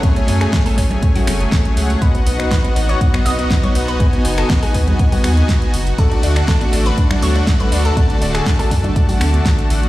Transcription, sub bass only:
X:1
M:4/4
L:1/8
Q:1/4=121
K:Bdor
V:1 name="Sub bass" clef=bass
z F,, z A,,, z F,,, z C,, | z B,,, z A,,, z B,,, z B,,, | z F,,, z ^D,, z D,, z F,,, | z D,, z A,,, z D,, z D,, |
z D,,, z F,, z D,, z A,,, |]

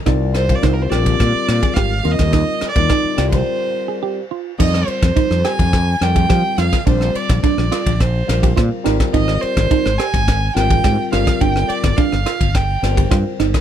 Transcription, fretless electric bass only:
X:1
M:4/4
L:1/16
Q:1/4=106
K:Fdor
V:1 name="Fretless electric bass" clef=bass
C,,4 C,,2 B,,,2 B,, z B,, z A,,,2 E,, E,,- | E,, z2 E,, z2 C,,2 z8 | F,,2 z F,, z F,, z F,,3 F,,2 F, z F,, z | B,,,2 z B,,, z B,,, z B,,,3 B,,,2 B,, z A,,, z |
A,,,2 z A,,, z A,,, z A,,,3 A,,,2 A,, z G,,, z | G,,,2 z G,,, z G,,, z G,,,3 G,,,2 G,, z G,,, z |]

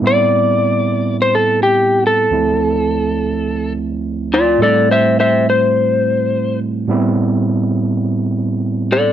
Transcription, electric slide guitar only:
X:1
M:4/4
L:1/16
Q:1/4=105
K:Am
V:1 name="Electric slide guitar"
d8 c A2 G3 A2- | A8- A2 z4 [Fd]2 | [Ad]2 [ce]2 [ce]2 c8 z2 | z12 z2 [Ad]2 |]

